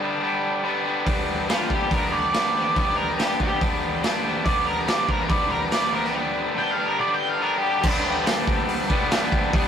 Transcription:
Already playing: G2 D3 D4 G4 B4
0.00 G3 B3 D4 E5
0.09 F5
0.21 D3 G3 B3 D4 G5
0.63 D3 G3 B3 D4 A5
0.84 G3 B3 D4
1.04 G2 D3 G3 B3 D4 G4, kick, open hi-hat
1.08 D4 B4
1.48 G2 D3 G3 B3 D4 F4, snare, open hi-hat
1.70 G3 B3 D4, kick
1.74 G4
1.90 D3 G3 B3 D4 A#4, kick, open hi-hat
2.11 D5
2.33 D3 G3 B3 D4, snare, open hi-hat
2.54 G3 B3 D4
2.76 G2 D3 G3 B3 D4, kick, open hi-hat
2.97 A#4
3.19 G2 D3 G3 B3 D4 G4, snare, open hi-hat
3.40 G3 B3 D4 G4, kick
3.61 D3 G3 B3 D4, kick, open hi-hat
4.02 D3 G3 B3 D4, snare, open hi-hat
4.23 G3 B3 D4
4.42 G2 D4 G4 B4 D5
4.46 D3 G3 B3 D4, kick, open hi-hat
4.67 A#4
4.87 G2 D3 G3 B3 D4 D5, snare, open hi-hat
5.08 G3 B3 D4 A#4, kick
5.29 D3 G3 B3 D4 D5, kick, open hi-hat
5.50 A#4
5.71 D3 G3 B3 D4 D5, snare, open hi-hat
5.92 G3 B3 D4 A#4
6.05 snare
6.13 G2 D3 G3 B3 D4
6.55 G2 D3 G3 B3 D4 G5
6.71 F5
6.77 G3 B3 D4
6.86 A#4
6.98 D3 G3 B3 D4 D5
7.14 G5
7.29 F5
7.40 D3 G3 B3 D4 A#4
7.58 D4 G4
7.63 G3 B3
7.82 G2 D3 G3 B3 D4 G4, kick, crash
7.87 B4
8.26 snare, open hi-hat
8.48 kick
8.69 open hi-hat
8.89 G2 D3 G3 B3 D4, kick
9.11 G2 D3 G3 B3 D4, snare, open hi-hat
9.32 kick
9.53 G2 D3 G3 B3 D4, kick, open hi-hat

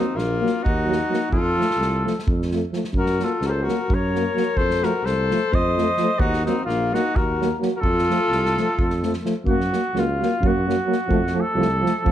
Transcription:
Already playing: C4 D#4
0.15 A#1 A#3 F4, snare
0.42 F#3 A#3
0.47 snare
0.63 D#2 D#4 F#4, kick
0.87 F#3 A#3
0.92 snare
1.09 F#3 A#3
1.14 snare
1.30 F2 F4 A4, kick
1.56 F3 A3
1.61 snare
1.70 snare
1.78 C2, snare
2.04 F3 A3, snare
2.19 snare
2.27 F2, kick
2.42 snare
2.51 F3 A3, snare
2.72 F3 A3, snare
2.84 snare
2.93 F#2, kick
2.97 F#4 A#4
3.06 snare
3.19 F#3 A#3, snare
3.23 F4 A4
3.41 C#2, snare
3.46 F#4 A#4 C5
3.50 A4
3.63 F#4 A#4
3.67 F#3 A#3, snare
3.89 F#2, kick
3.94 A#4 C#5
4.13 F#3 A#3, snare
4.35 F#3 A#3, snare
4.56 F2 A4 C5, kick
4.70 snare
4.81 F3 A3 F#4 A#4, snare
5.03 C2 A4 C5, snare
5.30 F3 A3, snare
5.52 F2 C5 D#5, kick
5.77 F3 A3, snare
5.97 F3 A3, snare
6.19 D#2 D#4 F#4, kick
6.33 snare
6.45 F#3 A#3 C4 D#4, snare
6.65 A#1 A#3 F4, snare
6.93 F#3 A#3 D#4 F#4, snare
7.15 D#2 F#4 A#4, kick
7.40 F#3 A#3, snare
7.60 F#3 A#3, snare
7.76 F#4 A#4
7.80 F2 F4 A4, kick
7.98 snare
8.09 F3 A3, snare
8.30 C2, snare
8.46 snare
8.57 F3 A3, snare
8.78 F2, kick
8.90 snare
9.02 F3 A3, snare
9.13 snare
9.24 F3 A3, snare
9.45 F#2 F#3 A#3 F#4, kick
9.61 snare
9.72 F#3 A#3, snare
9.94 C#2 F#3 A#3, snare
9.99 F4
10.20 F#3 A#3, snare
10.41 F#2 F#3 A#3, kick
10.47 F#4
10.66 F#3 A#3, snare
10.86 F#3 A#3
10.92 snare
11.08 F2 F3 A3, kick
11.27 snare
11.34 F3 A3
11.41 A4
11.55 C2 F3 A3
11.62 snare
11.81 F3 A3
11.86 snare
12.03 F2 F3 A3, kick

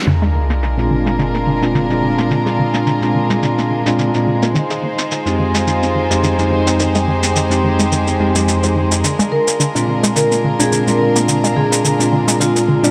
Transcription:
0.07 D3 G#3 D4 F4 A#4, sub drop, shaker
0.22 G#3, shaker
0.35 D3
0.50 A#3, shaker
0.63 D3, shaker
0.77 A#2 G#3 C4 D4 F4, shaker
0.91 D3
1.06 G#3, shaker
1.19 D3, shaker
1.34 A#3, shaker
1.47 D3
1.61 A#2 G#3 C4 D4 F4, shaker
1.75 D3, shaker
1.89 A#2 G#3 C4 D4 F4, shaker
2.03 D3
2.18 A#3, shaker
2.31 D3, shaker
2.46 G#3, shaker
2.59 D3
2.74 A#3, shaker
2.87 D3, shaker
3.01 A#2 G#3 C4 D4 F4, shaker
3.15 D3
3.30 G#3, shaker
3.43 D3, shaker
3.58 A#3, shaker
3.71 D3
3.86 A#2 G#3 C4 D4 F4, shaker
3.99 D3, shaker
4.14 A#2 G#3 C4 D4 F4, shaker
4.27 D3
4.42 A#3, shaker
4.55 D#3 D#4 F4 C5, shaker
4.70 G#3, shaker
4.83 D#3
4.98 C4, shaker
5.11 D#3, shaker
5.26 F2 G#3 C4 D#4 G4, shaker
5.39 D#3
5.55 G#3, shaker
5.67 D#3, shaker
5.83 C4, shaker
5.95 D#3
6.10 F2 G#3 C4 D#4 G4, shaker
6.24 D#3, shaker
6.38 F2 G#3 C4 D#4 G4, shaker
6.51 D#3
6.67 C4, shaker
6.79 D#3 G4, shaker
6.95 G#3, shaker
7.08 D#3
7.23 C4, shaker
7.36 D#3, shaker
7.50 F2 G#3 C4 D#4 G4, shaker
7.64 D#3
7.79 G#3, shaker
7.92 D#3, shaker
8.07 C4, shaker
8.20 F2 G#3 C4 D#4 G4
8.35 F2 G#3 C4 D#4 G4, shaker
8.48 F3, shaker
8.63 F3, shaker
8.76 D#3
8.91 D#4, shaker
9.04 D3 D4 F4 A#4, shaker
9.19 G#3, shaker
9.32 D3 A#4
9.47 A#3, shaker
9.60 D3, shaker
9.75 A#2 G#3 C4 D4 F4, shaker
9.88 D3
10.03 G#3, shaker
10.16 D3 A#4, shaker
10.32 A#3, shaker
10.44 D3
10.59 A#2 G#3 C4 D4 F4 G#4, shaker
10.72 D3, shaker
10.86 A#2 G#3 C4 D4 F4 A#4, shaker
11.01 D3
11.16 A#3, shaker
11.28 D3, shaker
11.44 G#3, shaker
11.56 D3 G#4
11.71 A#3 G#4, shaker
11.85 D3, shaker
11.99 A#2 G#3 C4 D4 F4, shaker
12.12 D3
12.28 G#3, shaker
12.40 D3 F4, shaker
12.56 A#3, shaker
12.68 D3
12.83 A#2 G#3 C4 D4 F4, shaker

